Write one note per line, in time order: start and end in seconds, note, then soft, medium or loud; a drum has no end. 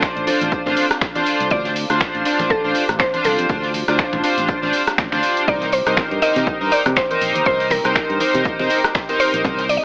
0.00 9.84 C4 medium
0.00 0.24 D4 medium
0.00 5.44 D4 medium
0.00 0.25 F4 medium
0.00 5.44 F4 medium
0.00 1.47 A4 medium
0.00 0.25 C5 medium
0.00 1.22 D5 medium
0.00 9.84 D6 medium
0.00 finger snap loud
0.00 kick loud
0.00 snare loud
0.00 closed hi-hat medium
0.00 shaker soft
0.17 0.24 A1 medium
0.17 closed hi-hat soft
0.27 0.63 D4 medium
0.27 0.63 F4 medium
0.27 0.63 C5 loud
0.27 closed hi-hat medium
0.27 open hi-hat loud
0.27 muted conga medium
0.27 shaker medium
0.41 0.49 A1 loud
0.41 snare soft
0.41 closed hi-hat medium
0.41 high conga medium
0.41 shaker medium
0.52 kick loud
0.52 closed hi-hat medium
0.52 shaker soft
0.66 0.74 A1 medium
0.66 0.85 D4 medium
0.66 0.85 F4 medium
0.66 0.85 C5 loud
0.66 snare soft
0.66 muted conga medium
0.76 closed hi-hat medium
0.76 open hi-hat loud
0.76 shaker medium
0.90 cross-stick medium
0.90 snare soft
0.90 closed hi-hat medium
0.90 shaker medium
1.01 finger snap loud
1.01 kick loud
1.01 snare loud
1.01 closed hi-hat medium
1.01 shaker soft
1.15 1.48 D4 medium
1.15 1.49 F4 medium
1.15 1.49 C5 loud
1.15 snare medium
1.15 closed hi-hat medium
1.15 muted conga medium
1.15 high conga medium
1.26 closed hi-hat medium
1.26 open hi-hat loud
1.26 shaker loud
1.40 1.48 C2 medium
1.40 closed hi-hat medium
1.40 shaker medium
1.50 1.84 D2 medium
1.50 1.71 D4 medium
1.50 1.72 F4 medium
1.50 9.84 G4 medium
1.50 1.72 C5 medium
1.50 2.53 D5 loud
1.50 kick loud
1.50 closed hi-hat medium
1.50 muted conga medium
1.50 shaker soft
1.65 snare medium
1.65 closed hi-hat soft
1.76 closed hi-hat medium
1.76 open hi-hat loud
1.76 shaker loud
1.90 1.98 D2 medium
1.90 2.23 D4 medium
1.90 2.23 F4 medium
1.90 2.23 C5 medium
1.90 cross-stick medium
1.90 snare soft
1.90 closed hi-hat medium
1.90 shaker medium
2.00 finger snap loud
2.00 kick loud
2.00 snare loud
2.00 closed hi-hat medium
2.00 muted conga medium
2.00 shaker soft
2.15 2.22 A1 medium
2.15 closed hi-hat soft
2.25 2.61 D4 medium
2.25 2.61 F4 medium
2.25 2.61 C5 medium
2.25 closed hi-hat medium
2.25 open hi-hat loud
2.25 shaker medium
2.39 2.47 A1 loud
2.39 snare medium
2.39 closed hi-hat medium
2.39 muted conga medium
2.39 high conga medium
2.39 shaker medium
2.50 3.02 A4 loud
2.50 kick loud
2.50 closed hi-hat medium
2.50 shaker soft
2.64 2.72 A1 medium
2.64 2.83 D4 medium
2.64 2.83 F4 medium
2.64 2.84 C5 loud
2.75 closed hi-hat medium
2.75 open hi-hat loud
2.75 shaker loud
2.89 2.97 A1 medium
2.89 cross-stick medium
2.89 closed hi-hat soft
2.89 closed hi-hat medium
2.89 muted conga medium
2.89 shaker soft
2.99 3.23 C5 loud
2.99 finger snap loud
2.99 kick loud
2.99 snare loud
2.99 closed hi-hat medium
2.99 shaker soft
3.13 3.47 D4 medium
3.13 3.47 F4 medium
3.13 3.47 C5 loud
3.13 closed hi-hat medium
3.13 high conga medium
3.24 3.35 C2 medium
3.24 4.20 A4 medium
3.24 closed hi-hat medium
3.24 open hi-hat loud
3.24 muted conga medium
3.24 shaker loud
3.39 3.46 F2 medium
3.39 closed hi-hat medium
3.39 shaker medium
3.49 3.82 D2 loud
3.49 3.70 D4 medium
3.49 3.70 F4 medium
3.49 3.70 C5 medium
3.49 kick loud
3.49 closed hi-hat loud
3.49 shaker soft
3.63 snare soft
3.63 open hi-hat medium
3.74 closed hi-hat medium
3.74 open hi-hat loud
3.74 muted conga soft
3.74 shaker medium
3.88 3.96 D2 medium
3.88 4.21 D4 medium
3.88 4.21 F4 medium
3.88 4.22 C5 medium
3.88 cross-stick medium
3.88 snare soft
3.88 closed hi-hat medium
3.88 shaker medium
3.98 finger snap loud
3.98 kick loud
3.98 snare loud
3.98 closed hi-hat medium
3.98 shaker soft
4.13 4.21 A1 medium
4.13 closed hi-hat soft
4.13 muted conga medium
4.13 low conga medium
4.24 4.59 D4 medium
4.24 4.59 F4 medium
4.24 4.60 C5 loud
4.24 closed hi-hat medium
4.24 open hi-hat loud
4.24 shaker medium
4.37 4.46 A1 loud
4.37 snare soft
4.37 closed hi-hat medium
4.37 high conga medium
4.37 shaker medium
4.48 kick loud
4.48 closed hi-hat medium
4.48 shaker soft
4.62 4.70 A1 medium
4.62 4.81 D4 loud
4.62 4.82 F4 medium
4.62 4.82 C5 loud
4.62 snare soft
4.62 muted conga soft
4.73 closed hi-hat medium
4.73 open hi-hat loud
4.73 shaker medium
4.87 cross-stick medium
4.87 snare soft
4.87 closed hi-hat medium
4.87 shaker soft
4.98 5.08 A1 medium
4.98 finger snap loud
4.98 kick loud
4.98 snare loud
4.98 closed hi-hat loud
4.98 muted conga medium
4.98 shaker soft
5.12 5.20 D2 medium
5.12 5.45 D4 medium
5.12 5.45 F4 medium
5.12 5.46 C5 loud
5.12 finger snap soft
5.12 snare medium
5.12 closed hi-hat soft
5.12 high conga medium
5.23 closed hi-hat medium
5.23 open hi-hat loud
5.23 shaker medium
5.37 closed hi-hat medium
5.37 shaker medium
5.47 5.80 C2 loud
5.47 5.68 D#4 medium
5.47 9.84 D#4 medium
5.47 5.68 A#4 medium
5.47 9.84 A#4 medium
5.47 5.68 C5 medium
5.47 5.74 D5 loud
5.47 kick loud
5.47 closed hi-hat medium
5.47 shaker soft
5.62 snare medium
5.62 closed hi-hat soft
5.62 muted conga soft
5.72 6.24 C5 loud
5.72 closed hi-hat medium
5.72 open hi-hat loud
5.72 shaker loud
5.86 5.94 C2 medium
5.86 6.19 D#4 medium
5.86 6.20 A#4 medium
5.86 6.20 C5 medium
5.86 cross-stick medium
5.86 snare soft
5.86 closed hi-hat medium
5.86 shaker medium
5.97 finger snap loud
5.97 kick loud
5.97 snare loud
5.97 closed hi-hat medium
5.97 muted conga medium
5.97 shaker soft
6.11 6.19 G2 medium
6.11 closed hi-hat soft
6.22 6.58 D#4 medium
6.22 6.58 A#4 medium
6.22 6.58 C5 loud
6.22 6.73 D#5 loud
6.22 closed hi-hat medium
6.22 open hi-hat loud
6.22 shaker medium
6.36 6.44 C3 loud
6.36 snare medium
6.36 closed hi-hat medium
6.36 high conga medium
6.36 shaker soft
6.47 kick loud
6.47 closed hi-hat medium
6.47 muted conga medium
6.47 shaker soft
6.61 6.69 G2 medium
6.61 6.80 D#4 loud
6.61 6.80 A#4 medium
6.61 6.80 C5 loud
6.72 6.97 D5 loud
6.72 closed hi-hat medium
6.72 open hi-hat loud
6.72 shaker medium
6.86 6.94 C3 medium
6.86 cross-stick medium
6.86 closed hi-hat medium
6.86 closed hi-hat soft
6.86 muted conga medium
6.86 shaker soft
6.96 7.45 C5 loud
6.96 finger snap loud
6.96 kick loud
6.96 snare loud
6.96 closed hi-hat loud
6.96 shaker soft
7.10 7.43 D#4 medium
7.10 7.44 A#4 medium
7.10 7.44 C5 loud
7.10 closed hi-hat soft
7.10 high conga medium
7.21 7.31 A#1 medium
7.21 closed hi-hat medium
7.21 open hi-hat loud
7.21 shaker medium
7.35 7.43 D#2 medium
7.35 closed hi-hat medium
7.35 muted conga medium
7.35 shaker medium
7.46 7.79 C2 loud
7.46 7.66 D#4 medium
7.46 7.67 A#4 medium
7.46 7.69 C5 loud
7.46 7.67 C5 medium
7.46 kick loud
7.46 closed hi-hat medium
7.46 shaker soft
7.60 snare soft
7.60 open hi-hat medium
7.70 9.24 A#4 medium
7.70 closed hi-hat medium
7.70 open hi-hat loud
7.70 muted conga medium
7.70 shaker medium
7.84 7.93 C2 medium
7.84 8.18 D#4 medium
7.84 8.18 A#4 medium
7.84 8.18 C5 medium
7.84 cross-stick medium
7.84 snare soft
7.84 closed hi-hat medium
7.84 shaker soft
7.95 finger snap loud
7.95 kick loud
7.95 snare loud
7.95 closed hi-hat medium
7.95 shaker soft
8.10 8.18 G2 medium
8.10 closed hi-hat soft
8.20 8.56 D#4 medium
8.20 8.56 A#4 medium
8.20 8.56 C5 medium
8.20 closed hi-hat medium
8.20 open hi-hat loud
8.20 muted conga soft
8.20 shaker medium
8.34 8.42 C3 loud
8.34 snare soft
8.34 closed hi-hat medium
8.34 high conga medium
8.34 shaker medium
8.45 kick loud
8.45 closed hi-hat medium
8.45 shaker soft
8.59 8.67 C3 medium
8.59 8.78 D#4 medium
8.59 8.78 A#4 medium
8.59 8.79 C5 loud
8.59 snare soft
8.59 muted conga medium
8.70 closed hi-hat medium
8.70 open hi-hat loud
8.70 shaker medium
8.84 cross-stick medium
8.84 snare soft
8.84 closed hi-hat medium
8.84 shaker soft
8.95 finger snap loud
8.95 kick loud
8.95 snare loud
8.95 closed hi-hat medium
8.95 shaker soft
9.09 9.42 D#4 medium
9.09 9.42 A#4 medium
9.09 9.42 C5 loud
9.09 snare medium
9.09 closed hi-hat medium
9.09 muted conga medium
9.09 high conga medium
9.20 9.71 C5 loud
9.20 closed hi-hat medium
9.20 open hi-hat loud
9.20 shaker medium
9.34 9.41 A#1 medium
9.34 closed hi-hat medium
9.34 shaker medium
9.44 9.77 C2 loud
9.44 9.65 D#4 medium
9.44 9.65 A#4 medium
9.44 9.65 C5 medium
9.44 kick loud
9.44 closed hi-hat medium
9.44 muted conga medium
9.44 shaker soft
9.59 snare medium
9.59 closed hi-hat medium
9.69 9.77 D5 loud
9.69 closed hi-hat medium
9.69 open hi-hat loud
9.69 shaker medium
9.77 9.84 D#5 medium